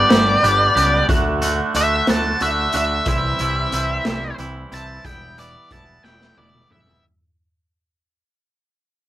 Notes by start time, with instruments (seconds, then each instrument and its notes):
Already playing: lead electric guitar D5
0.09 picked electric bass G1, clean electric guitar G3 B3 D4 G4, snare, closed hi-hat
0.43 picked electric bass G1, clean electric guitar G3 B3 D4 G4, closed hi-hat
0.75 picked electric bass C#2, clean electric guitar G3 B3 D4 G4, closed hi-hat
1.09 picked electric bass D2, clean electric guitar D3 A3 D4 F#4, kick, closed hi-hat
1.42 clean electric guitar D3 A3 D4 F#4, closed hi-hat
1.75 picked electric bass D2, clean electric guitar D3 A3 D4 F#4, lead electric guitar E5, closed hi-hat
2.07 picked electric bass D2, clean electric guitar D3 A3 D4 F#4, lead electric guitar A5, snare, closed hi-hat
2.40 picked electric bass D2, clean electric guitar D3 A3 D4 F#4, lead electric guitar E5, closed hi-hat
2.73 picked electric bass D2, clean electric guitar D3 A3 D4 F#4, closed hi-hat
2.77 lead electric guitar E5
3.06 picked electric bass C2, clean electric guitar E3 G3 C4 E4, lead electric guitar E5, kick, closed hi-hat
3.39 picked electric bass C2, clean electric guitar E3 G3 C4 E4, closed hi-hat
3.72 picked electric bass C2, clean electric guitar E3 G3 C4 E4, closed hi-hat
4.05 picked electric bass C2, clean electric guitar E3 G3 C4 E4, snare, closed hi-hat
4.38 picked electric bass C2, clean electric guitar E3 G3 C4 E4, closed hi-hat
4.72 picked electric bass C2, clean electric guitar E3 G3 C4 E4, lead electric guitar A5, closed hi-hat
5.04 picked electric bass E1, clean electric guitar E3 G3 B3 E4, lead electric guitar G5, kick, closed hi-hat
5.38 clean electric guitar E3 G3 B3 E4, lead electric guitar D5, closed hi-hat
5.71 picked electric bass E1, clean electric guitar E3 G3 B3 E4, lead electric guitar A5, kick, closed hi-hat
6.04 picked electric bass E1, clean electric guitar E3 G3 B3 E4, lead electric guitar G5, snare
6.21 snare
6.37 picked electric bass E1, clean electric guitar E3 G3 B3 E4, lead electric guitar D5, high tom
6.54 mid tom
6.70 picked electric bass E1, clean electric guitar E3 G3 B3 E4, lead electric guitar E5, mid tom
6.87 floor tom